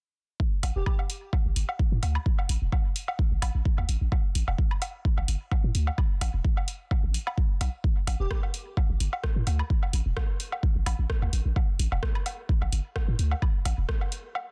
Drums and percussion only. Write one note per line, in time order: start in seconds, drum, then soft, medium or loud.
0.40 kick loud
0.63 open hi-hat medium
0.63 low woodblock soft
0.86 kick medium
0.86 high woodblock medium
0.99 low woodblock soft
1.10 open hi-hat medium
1.33 kick loud
1.33 low woodblock soft
1.56 open hi-hat medium
1.69 low woodblock soft
1.79 kick loud
2.03 open hi-hat medium
2.03 low woodblock soft
2.15 high woodblock medium
2.26 kick loud
2.39 low woodblock soft
2.49 open hi-hat medium
2.72 kick medium
2.72 low woodblock soft
2.96 open hi-hat medium
3.08 low woodblock soft
3.19 kick loud
3.42 open hi-hat medium
3.42 high woodblock medium
3.42 low woodblock soft
3.65 kick loud
3.78 low woodblock soft
3.89 open hi-hat medium
4.12 kick loud
4.12 low woodblock soft
4.35 open hi-hat medium
4.48 low woodblock soft
4.58 kick loud
4.71 high woodblock medium
4.82 open hi-hat medium
4.82 low woodblock soft
5.05 kick loud
5.18 low woodblock soft
5.28 open hi-hat medium
5.51 kick loud
5.51 low woodblock soft
5.75 open hi-hat medium
5.87 low woodblock soft
5.98 kick loud
5.98 high woodblock medium
6.21 open hi-hat medium
6.21 low woodblock soft
6.45 kick loud
6.57 low woodblock soft
6.68 open hi-hat medium
6.91 kick loud
6.91 low woodblock soft
7.14 open hi-hat medium
7.27 high woodblock medium
7.27 low woodblock soft
7.38 kick loud
7.61 open hi-hat medium
7.61 low woodblock soft
7.84 kick loud
8.07 open hi-hat medium
8.07 low woodblock soft
8.31 kick medium
8.31 cross-stick medium
8.31 high woodblock medium
8.43 low woodblock soft
8.54 open hi-hat medium
8.77 kick loud
8.77 low woodblock soft
9.00 open hi-hat medium
9.13 low woodblock soft
9.24 kick loud
9.24 cross-stick medium
9.47 open hi-hat medium
9.47 low woodblock soft
9.59 high woodblock medium
9.70 kick loud
9.83 low woodblock soft
9.93 open hi-hat medium
10.17 kick medium
10.17 cross-stick medium
10.17 low woodblock soft
10.40 open hi-hat medium
10.52 low woodblock soft
10.63 kick loud
10.86 open hi-hat medium
10.86 high woodblock medium
10.86 low woodblock soft
11.10 kick loud
11.10 cross-stick medium
11.22 low woodblock soft
11.33 open hi-hat medium
11.56 kick loud
11.56 low woodblock soft
11.79 open hi-hat medium
11.92 low woodblock soft
12.03 kick medium
12.03 cross-stick medium
12.15 high woodblock medium
12.26 open hi-hat medium
12.26 low woodblock soft
12.49 kick loud
12.62 low woodblock soft
12.72 open hi-hat medium
12.96 kick loud
12.96 cross-stick medium
12.96 low woodblock soft
13.19 open hi-hat medium
13.31 low woodblock soft
13.42 kick loud
13.42 high woodblock medium
13.65 open hi-hat medium
13.65 low woodblock soft
13.89 kick medium
13.89 cross-stick medium
14.01 low woodblock soft
14.12 open hi-hat medium
14.35 low woodblock soft